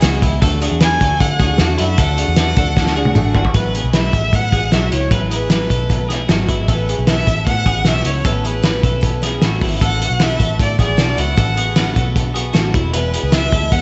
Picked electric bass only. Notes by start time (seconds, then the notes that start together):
0.04 C#2
0.23 C#2
0.42 D2
0.72 E2
1.01 D2
1.20 D3
1.40 D2
1.60 E2
1.81 F#2
1.98 D2
2.28 E2
2.57 D2
3.16 A1
3.35 G#1
3.55 A1
3.84 B1
4.14 A1
4.33 A2
4.53 A1
4.73 B1
4.92 C#2
5.11 A1
5.70 B1
6.30 G#1
6.49 G#1
6.68 A1
6.99 B1
7.27 A1
7.47 A2
7.66 A1
7.86 B1
8.05 C#2
8.25 A1
8.83 B1
9.42 A1
9.62 G#1
9.82 A1
10.10 B1
10.40 A1
10.60 A2
10.79 A1
10.99 B1
11.18 C#2
11.38 A1
11.96 B1
12.55 A1
12.75 E1
13.23 C#2
13.52 D2
13.72 E2